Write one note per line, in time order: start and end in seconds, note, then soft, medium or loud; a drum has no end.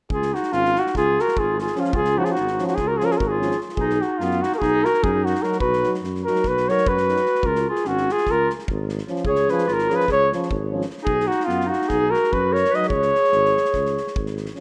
0.10 0.33 C#2 medium
0.10 0.35 F4 medium
0.10 0.36 G#4 medium
0.10 kick medium
0.22 snare soft
0.33 0.54 D#4 medium
0.33 0.55 F#4 medium
0.33 snare soft
0.43 snare soft
0.52 0.76 G#1 medium
0.52 0.78 C#4 medium
0.52 0.81 F4 loud
0.52 snare soft
0.65 snare soft
0.76 0.95 D#4 medium
0.76 0.96 F#4 medium
0.76 snare soft
0.86 snare soft
0.95 1.18 C#2 medium
0.95 1.22 F4 medium
0.95 1.22 G#4 medium
0.95 kick medium
0.95 snare soft
1.19 1.40 F#4 medium
1.19 1.40 A#4 medium
1.19 snare soft
1.28 snare soft
1.37 1.69 G#1 medium
1.37 1.59 F4 medium
1.37 1.59 G#4 medium
1.37 kick medium
1.59 1.78 F4 medium
1.59 1.81 G#4 medium
1.59 snare soft
1.67 snare soft
1.75 1.93 F3 medium
1.75 1.92 C#4 medium
1.75 1.95 C#4 medium
1.75 snare soft
1.80 1.97 F4 medium
1.84 snare soft
1.93 2.18 C#2 medium
1.93 2.20 F4 medium
1.93 2.20 G#4 medium
1.93 kick medium
2.05 snare soft
2.17 2.34 F3 medium
2.17 2.34 C#4 medium
2.17 2.26 D#4 medium
2.17 2.27 F#4 medium
2.25 2.34 F4 medium
2.25 2.33 G#4 medium
2.25 snare soft
2.31 2.67 D#4 medium
2.31 2.66 F#4 medium
2.35 2.60 G#1 medium
2.35 snare soft
2.47 snare soft
2.58 2.76 F3 medium
2.58 2.76 C#4 medium
2.58 snare soft
2.67 2.82 D#4 medium
2.67 2.77 F#4 medium
2.67 snare soft
2.75 3.02 C#2 medium
2.75 2.89 G#4 medium
2.75 kick medium
2.75 snare soft
2.80 2.93 F4 medium
2.88 3.01 F#4 medium
2.88 2.99 A#4 medium
2.97 3.16 F3 medium
2.97 3.08 F4 soft
2.97 3.07 G#4 medium
2.97 snare soft
3.02 3.18 C#4 medium
3.02 3.13 A#4 medium
3.06 3.15 F#4 medium
3.11 3.21 F4 medium
3.11 3.19 G#4 medium
3.11 snare soft
3.18 3.52 G#1 medium
3.18 3.32 F#4 medium
3.18 3.29 A#4 medium
3.18 kick medium
3.28 3.60 F4 medium
3.28 3.59 G#4 medium
3.39 3.56 F3 medium
3.39 3.54 C#4 medium
3.39 snare soft
3.51 snare soft
3.61 snare soft
3.69 snare soft
3.76 4.00 B1 medium
3.76 4.03 G#4 medium
3.76 kick medium
3.80 4.06 D#4 medium
3.90 snare soft
4.02 4.20 F#4 medium
4.02 snare soft
4.06 4.24 D#4 medium
4.18 4.43 F#2 medium
4.18 4.44 B3 medium
4.18 4.44 F4 medium
4.18 snare soft
4.31 snare soft
4.42 4.56 D#4 medium
4.42 4.54 F#4 medium
4.42 snare soft
4.52 4.60 A#4 medium
4.52 snare soft
4.57 4.64 F#4 medium
4.57 4.86 G#4 medium
4.62 4.85 B1 medium
4.62 4.87 D#4 loud
4.62 kick medium
4.62 snare soft
4.84 5.07 F#4 medium
4.84 5.05 A#4 medium
4.84 snare soft
4.94 snare soft
5.03 5.34 F#2 loud
5.03 5.26 D#4 medium
5.03 5.26 G#4 medium
5.03 kick medium
5.25 5.46 D#4 medium
5.25 5.44 F#4 medium
5.25 snare soft
5.35 snare soft
5.41 5.59 F#3 medium
5.41 5.58 D#4 soft
5.41 5.60 F#4 medium
5.41 5.59 A#4 medium
5.41 snare soft
5.52 snare soft
5.60 5.84 B1 medium
5.60 5.93 F#4 medium
5.60 5.93 B4 medium
5.60 kick medium
5.73 snare soft
5.81 5.99 F#3 medium
5.81 6.00 D#4 medium
5.81 snare soft
5.94 snare soft
6.03 6.26 F#2 medium
6.03 snare soft
6.15 snare soft
6.24 6.43 F#3 soft
6.24 6.43 D#4 soft
6.24 6.48 F#4 medium
6.24 6.49 A#4 medium
6.24 snare soft
6.35 snare soft
6.44 6.68 B1 medium
6.44 6.72 F#4 medium
6.44 6.70 B4 medium
6.44 kick medium
6.44 snare soft
6.57 snare soft
6.68 6.84 F#3 medium
6.68 6.84 D#4 soft
6.68 6.90 A#4 medium
6.68 6.89 C#5 medium
6.68 snare soft
6.78 snare soft
6.86 7.17 F#2 medium
6.86 7.48 F#4 medium
6.86 7.47 B4 medium
6.86 kick medium
6.97 snare soft
7.07 7.22 F#3 soft
7.07 7.21 D#4 soft
7.07 snare soft
7.17 snare soft
7.26 snare soft
7.35 snare soft
7.43 7.67 C#2 medium
7.43 7.67 F4 medium
7.43 7.68 A#4 medium
7.43 kick medium
7.55 snare soft
7.68 7.87 F4 medium
7.68 7.89 G#4 medium
7.75 snare soft
7.85 8.08 G#1 medium
7.85 8.13 C#4 medium
7.85 8.13 F#4 medium
7.85 snare soft
7.97 snare soft
8.09 8.28 F4 medium
8.09 8.32 G#4 medium
8.09 snare soft
8.18 snare soft
8.26 8.50 C#2 medium
8.26 8.51 F4 medium
8.26 kick medium
8.26 snare soft
8.31 8.52 A#4 medium
8.50 snare soft
8.59 snare soft
8.68 9.00 G#1 medium
8.68 kick medium
8.89 snare soft
8.98 snare soft
9.07 9.25 F3 medium
9.07 9.24 C#4 medium
9.07 snare soft
9.16 snare soft
9.25 9.48 C#2 medium
9.25 9.51 G#4 medium
9.25 9.52 C#5 medium
9.25 kick medium
9.35 snare soft
9.48 9.67 F3 medium
9.48 9.64 C#4 medium
9.48 9.69 G#4 medium
9.48 9.75 B4 medium
9.48 snare soft
9.58 snare soft
9.67 9.90 G#1 medium
9.67 9.91 F4 medium
9.67 snare soft
9.73 9.97 A#4 loud
9.79 snare soft
9.89 10.07 F3 medium
9.89 10.06 C#4 medium
9.89 10.07 G#4 medium
9.89 snare soft
9.96 10.11 B4 medium
10.00 snare soft
10.08 10.31 C#2 medium
10.08 10.30 G#4 medium
10.08 kick medium
10.08 snare soft
10.12 10.32 C#5 loud
10.32 10.49 F3 medium
10.32 10.48 C#4 medium
10.32 snare soft
10.43 snare soft
10.51 10.82 G#1 medium
10.51 kick medium
10.71 10.86 F3 medium
10.71 10.85 C#4 medium
10.81 snare soft
10.90 snare soft
10.98 11.28 D#4 medium
10.98 snare soft
11.04 11.29 B1 medium
11.04 11.29 G#4 medium
11.04 kick medium
11.20 snare soft
11.27 11.48 D#4 medium
11.27 11.46 F#4 medium
11.27 snare soft
11.40 snare soft
11.45 11.71 F#2 medium
11.45 11.67 B3 medium
11.45 11.71 F4 medium
11.49 snare soft
11.60 snare soft
11.66 11.86 D#4 medium
11.66 11.90 F#4 medium
11.73 snare soft
11.82 snare soft
11.86 12.13 D#4 medium
11.86 12.12 G#4 medium
11.86 snare soft
11.90 12.13 B1 medium
11.90 kick medium
12.11 12.30 F#4 medium
12.11 12.35 A#4 medium
12.11 snare soft
12.24 snare soft
12.30 12.63 F#2 medium
12.30 12.54 F#4 medium
12.30 12.55 B4 medium
12.30 kick medium
12.52 12.72 A#4 medium
12.52 12.77 C#5 medium
12.52 snare soft
12.65 snare soft
12.71 12.89 F#3 medium
12.71 12.89 D#4 medium
12.71 12.87 B4 medium
12.71 snare soft
12.75 12.89 D#5 medium
12.83 snare soft
12.88 13.12 C#2 medium
12.88 14.32 G#4 medium
12.88 14.32 C#5 medium
12.88 kick medium
13.02 snare soft
13.15 snare soft
13.24 snare soft
13.32 13.55 G#1 medium
13.32 snare soft
13.45 snare soft
13.57 snare soft
13.65 snare soft
13.74 13.97 C#2 medium
13.74 kick medium
13.74 snare soft
13.86 snare soft
13.97 snare soft
14.07 snare soft
14.16 14.48 G#1 medium
14.16 kick medium
14.26 snare soft
14.37 snare soft
14.46 snare soft
14.55 14.60 F3 medium
14.55 14.60 C#4 soft
14.55 snare soft